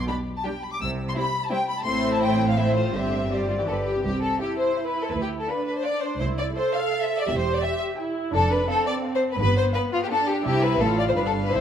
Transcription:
0.07 viola section G3 D4, violin section G4 B5
0.36 violin section A5
0.44 viola section G3 D4, violin section G4 G5
0.62 violin section B5
0.73 violin section D6
0.80 double bass section C2, cello section C3, violin section E6
1.09 violin section C6
1.15 viola section G3 C4, violin section E4 C5 B5
1.44 violin section A5
1.50 viola section G3 C4, violin section E4 C5 G5
1.68 violin section B5
1.78 violin section A5
1.85 double bass section A1, cello section A2, viola section A3 C4, violin section E4 C5 C6
2.12 violin section A5
2.21 violin section G5
2.48 violin section F5
2.56 viola section A3 C4, violin section E4 C5 E5
2.75 violin section F4 C5
2.94 double bass section G1, cello section G2, viola section D3 C4, violin section G4 C5 E5
3.30 viola section G3, violin section G4 C5 D5
3.49 violin section F4
3.59 viola section E3, violin section G4
3.67 double bass section G1, cello section G2, viola section D3, violin section G4 A4 B4
3.85 violin section G4
3.96 viola section C3
4.04 double bass section C2, cello section C2, viola section C4, violin section G4
4.22 violin section A4
4.40 viola section E4, violin section G4 E5
4.59 violin section C5
4.76 violin section E5
4.86 violin section B4
5.03 violin section A4
5.12 double bass section D2, cello section D2, violin section B4
5.22 violin section G4
5.40 violin section A4
5.49 viola section D4, violin section B4 F5
5.67 violin section B4
5.76 violin section C5
5.83 violin section D5 F5
6.02 violin section C5
6.19 cello section C2, double bass section C2, viola section E4, violin section C5
6.38 violin section D5
6.56 viola section A4, violin section C5 E5
6.74 violin section F5
6.92 violin section E5
7.02 violin section E5
7.19 violin section D5
7.27 double bass section E1, cello section E2, viola section G4, violin section E5
7.38 violin section C5
7.55 violin section D5
7.63 violin section E5 G5
7.97 viola section E4, violin section G5
8.33 double bass section F1, cello section F2, viola section D4, violin section A4
8.52 violin section B4
8.68 viola section C4, violin section A4 F5
8.86 violin section D5
9.04 violin section F5
9.15 violin section C5
9.32 violin section B4
9.39 double bass section G1, cello section G2, viola section B3, violin section B4
9.57 violin section C5
9.74 violin section B4 F5
9.93 violin section F4
10.03 violin section G4
10.09 viola section D4, violin section A4 F5
10.27 violin section G4
10.45 double bass section C2, cello section C3, viola section E4, violin section G4 E5
10.62 violin section B4
10.80 double bass section A1, cello section A2, viola section F4, violin section A4 F5
10.98 violin section D5
11.08 violin section C5
11.16 double bass section G1, cello section G2, viola section D4, violin section B4 F5
11.25 violin section A4
11.44 violin section B4
11.53 double bass section C2, cello section C3, viola section E4, violin section C5 E5

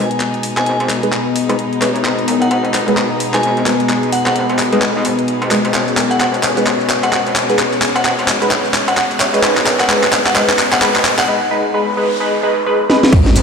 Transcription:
Already playing: string section B2 G#3 D#4, ambient pad B3 G#4 D#5 B5, riser
0.11 closed hi-hat
0.20 clap, closed hi-hat
0.34 closed hi-hat
0.43 open hi-hat
0.57 wobble bass G#1, synth bell G#5, clap, closed hi-hat
0.66 synth bell G#5, closed hi-hat
0.80 wobble bass G#1, closed hi-hat
0.89 clap, open hi-hat
1.03 synth stab G#3 D#4 B4, closed hi-hat
1.13 clap, closed hi-hat
1.36 open hi-hat
1.49 wobble bass G#1, synth stab G#3 D#4 B4, closed hi-hat
1.59 closed hi-hat
1.73 closed hi-hat
1.82 wobble bass A1, synth stab G#3 D#4 B4, clap, open hi-hat
1.96 closed hi-hat
2.05 wobble bass G#1, clap, closed hi-hat
2.19 closed hi-hat
2.28 wobble bass F#1, open hi-hat
2.42 synth bell F#5, closed hi-hat
2.51 wobble bass G#1, synth bell F#5, closed hi-hat
2.65 closed hi-hat
2.74 clap, open hi-hat
2.88 synth stab G#3 D#4 B4, closed hi-hat
2.97 wobble bass G#1, clap, closed hi-hat
3.20 open hi-hat
3.34 wobble bass G#1, synth stab G#3 D#4 B4, synth bell G#5, clap, closed hi-hat
3.43 synth bell G#5, closed hi-hat
3.57 closed hi-hat
3.66 synth stab G#3 D#4 B4, clap, open hi-hat
3.80 closed hi-hat
3.89 clap, closed hi-hat
4.03 closed hi-hat
4.12 synth bell F#5, open hi-hat
4.26 wobble bass G#1, synth bell F#5, clap, closed hi-hat
4.36 synth bell F#5, closed hi-hat
4.49 wobble bass G#1, closed hi-hat
4.59 clap, open hi-hat
4.73 wobble bass B1, synth stab G#3 D#4 B4, closed hi-hat
4.82 clap, closed hi-hat
5.05 wobble bass G#1, open hi-hat
5.19 closed hi-hat
5.28 closed hi-hat
5.42 wobble bass G#1, closed hi-hat
5.51 synth stab G#3 D#4 B4, clap, open hi-hat
5.65 wobble bass G#1, closed hi-hat
5.74 wobble bass G#1, string section C#4, clap, closed hi-hat, shaker
5.88 closed hi-hat, shaker
5.97 wobble bass F#1, clap, open hi-hat, shaker
6.11 synth bell F#5, closed hi-hat, shaker
6.20 wobble bass G#1, synth bell F#5, clap, closed hi-hat, shaker
6.34 closed hi-hat, shaker
6.43 clap, open hi-hat, shaker
6.57 synth stab G#3 D#4 B4, closed hi-hat, shaker
6.66 wobble bass G#1, clap, closed hi-hat, shaker
6.81 shaker
6.90 clap, open hi-hat, shaker
7.03 wobble bass G#1, synth bell F#5, closed hi-hat, shaker
7.13 synth bell F#5, clap, closed hi-hat, shaker
7.27 closed hi-hat, shaker
7.36 clap, open hi-hat, shaker
7.45 ambient pad C#5
7.49 synth stab G#3 D#4 B4, closed hi-hat, shaker
7.59 clap, closed hi-hat, shaker
7.73 closed hi-hat, shaker
7.82 clap, open hi-hat, shaker
7.96 wobble bass G#1, synth bell F#5, closed hi-hat, shaker
8.05 synth bell F#5, clap, closed hi-hat, shaker
8.19 wobble bass G#1, closed hi-hat, shaker
8.28 clap, open hi-hat, shaker
8.42 synth stab G#3 D#4 B4, closed hi-hat, shaker
8.51 clap, closed hi-hat, shaker
8.65 shaker
8.74 clap, open hi-hat, shaker
8.88 wobble bass G#1, synth bell F#5, closed hi-hat, shaker
8.97 synth bell F#5, clap, closed hi-hat, shaker
9.11 closed hi-hat, shaker
9.20 wobble bass A1, clap, open hi-hat, shaker
9.34 synth stab G#3 D#4 B4, closed hi-hat, shaker
9.43 wobble bass G#1, synth stab G#3 D#4 B4, clap, closed hi-hat, shaker
9.57 clap, closed hi-hat, shaker
9.66 wobble bass F#1, clap, open hi-hat, shaker
9.80 synth bell F#5, clap, closed hi-hat, shaker
9.89 wobble bass G#1, synth stab G#3 D#4 B4, clap, closed hi-hat, shaker
10.04 clap, closed hi-hat, shaker
10.13 clap, open hi-hat, shaker
10.26 synth bell F#5, clap, closed hi-hat, shaker
10.36 wobble bass G#1, synth stab G#3 D#4 B4, clap, closed hi-hat, shaker
10.49 clap, shaker
10.59 clap, open hi-hat, shaker
10.73 wobble bass G#1, synth bell F#5, clap, closed hi-hat, shaker
10.82 synth stab G#3 D#4 B4, clap, closed hi-hat, shaker
10.96 clap, closed hi-hat, shaker
11.05 clap, open hi-hat, shaker
11.19 synth bell F#5, clap, closed hi-hat, shaker
11.28 synth stab G#3 D#4 B4, noise sweep
11.51 synth stab G#3 D#4 B4
11.74 synth stab G#3 D#4 B4
11.97 synth stab G#3 D#4 B4
12.20 synth stab G#3 D#4 B4
12.43 synth stab G#3 D#4 B4
12.66 synth stab G#3 D#4 B4
12.90 synth stab G#3 D#4 B4, snare
13.03 snare
13.13 wobble bass G#1, string section B2 G#3 D#4, kick, closed hi-hat, crash, impact, shaker
13.26 snare, closed hi-hat
13.36 open hi-hat, shaker

